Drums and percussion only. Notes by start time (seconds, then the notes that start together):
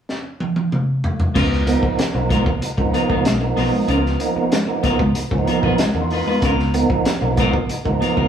0.09 snare
0.40 high tom
0.56 high tom
0.72 mid tom
1.04 floor tom
1.20 floor tom
1.35 kick, crash
1.53 snare
1.67 closed hi-hat
1.83 kick
1.99 snare, closed hi-hat
2.30 kick, closed hi-hat
2.46 kick
2.62 closed hi-hat
2.78 kick
2.94 closed hi-hat
3.10 kick
3.25 snare, closed hi-hat
3.57 snare, open hi-hat
3.88 closed hi-hat
4.06 snare
4.20 closed hi-hat
4.52 snare, closed hi-hat
4.83 kick, closed hi-hat
4.99 kick
5.15 closed hi-hat
5.31 kick
5.47 closed hi-hat
5.63 kick
5.78 snare, closed hi-hat
6.10 open hi-hat
6.42 kick, closed hi-hat
6.59 snare
6.74 closed hi-hat
6.90 kick
7.05 snare, closed hi-hat
7.37 kick, closed hi-hat
7.53 kick
7.69 closed hi-hat
7.85 kick
8.02 closed hi-hat
8.17 kick